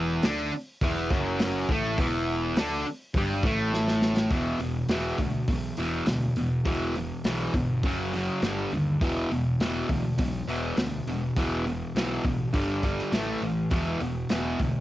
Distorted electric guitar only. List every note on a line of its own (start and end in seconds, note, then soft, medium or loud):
0.00 0.22 E2 medium
0.00 0.23 E3 loud
0.23 0.51 D3 loud
0.23 0.52 D4 loud
0.82 1.11 E2 loud
0.82 1.12 E3 loud
1.11 1.68 F#2 medium
1.11 1.68 F#3 loud
1.70 1.97 A2 medium
1.70 1.98 A3 loud
1.99 2.56 E2 medium
1.99 2.56 E3 loud
2.58 2.85 D3 loud
2.58 2.86 D4 loud
3.16 3.43 G2 medium
3.16 3.44 G3 loud
3.44 4.31 A2 medium
3.44 4.31 A3 loud
4.31 4.58 E2 medium
4.31 4.59 B2 medium
4.31 4.59 E3 medium
4.61 4.87 E2 medium
4.61 4.87 B2 medium
4.89 5.17 E2 medium
4.89 5.17 B2 medium
4.89 5.18 E3 medium
5.19 5.45 E2 medium
5.19 5.46 B2 medium
5.48 5.75 E2 medium
5.48 5.75 B2 medium
5.78 6.05 E2 medium
5.78 6.06 B2 medium
5.78 6.06 E3 medium
6.07 6.33 E2 medium
6.07 6.33 B2 medium
6.37 6.63 E2 medium
6.37 6.63 B2 medium
6.65 6.93 E2 medium
6.65 6.94 B2 medium
6.65 6.94 E3 medium
6.96 7.22 E2 medium
6.96 7.22 B2 medium
7.25 7.52 E2 medium
7.25 7.53 B2 loud
7.25 7.53 E3 loud
7.54 7.81 E2 medium
7.54 7.81 B2 medium
7.85 8.12 F#2 loud
7.85 8.12 C#3 medium
7.85 8.12 F#3 loud
8.14 8.41 F#2 medium
8.14 8.42 C#3 medium
8.14 8.42 F#3 loud
8.44 8.70 G2 medium
8.44 8.71 D3 medium
8.44 8.71 G3 loud
8.73 8.99 G2 medium
8.73 8.99 D3 medium
9.02 9.29 E2 medium
9.02 9.29 B2 medium
9.02 9.30 E3 medium
9.32 9.57 E2 medium
9.32 9.58 B2 medium
9.61 9.88 E2 medium
9.61 9.88 B2 medium
9.61 9.89 E3 loud
9.89 10.16 E2 medium
9.89 10.16 B2 medium
10.18 10.45 E2 medium
10.18 10.45 B2 medium
10.48 10.76 E2 medium
10.48 10.76 B2 medium
10.48 10.76 E3 loud
10.78 11.05 E2 medium
10.78 11.04 B2 medium
11.08 11.34 E2 medium
11.08 11.34 B2 medium
11.37 11.64 E2 medium
11.37 11.65 B2 medium
11.37 11.65 E3 loud
11.66 11.93 E2 medium
11.66 11.93 B2 medium
11.96 12.23 E2 medium
11.96 12.24 B2 loud
11.96 12.24 E3 medium
12.24 12.51 E2 medium
12.24 12.51 B2 medium
12.53 12.81 G2 medium
12.53 12.82 D3 loud
12.53 12.82 G3 loud
12.83 13.11 G2 medium
12.83 13.12 D3 medium
12.83 13.12 G3 medium
13.12 13.40 A2 medium
13.12 13.41 E3 medium
13.12 13.41 A3 loud
13.43 13.69 A2 medium
13.43 13.69 E3 medium
13.71 13.99 E2 medium
13.71 14.00 B2 medium
13.71 14.00 E3 medium
14.02 14.28 E2 medium
14.02 14.28 B2 medium
14.30 14.58 E2 medium
14.30 14.58 B2 medium
14.30 14.59 E3 loud
14.61 14.80 E2 medium
14.61 14.80 B2 medium